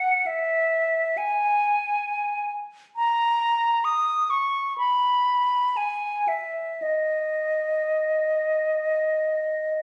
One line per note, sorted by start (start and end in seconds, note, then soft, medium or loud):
0.00 0.28 F#5 medium
0.26 1.19 E5 medium
1.17 2.51 G#5 medium
2.96 3.86 A#5 medium
3.85 4.32 D#6 medium
4.30 4.77 C#6 medium
4.78 5.78 B5 medium
5.77 6.30 G#5 soft
6.28 6.84 E5 soft
6.82 9.82 D#5 soft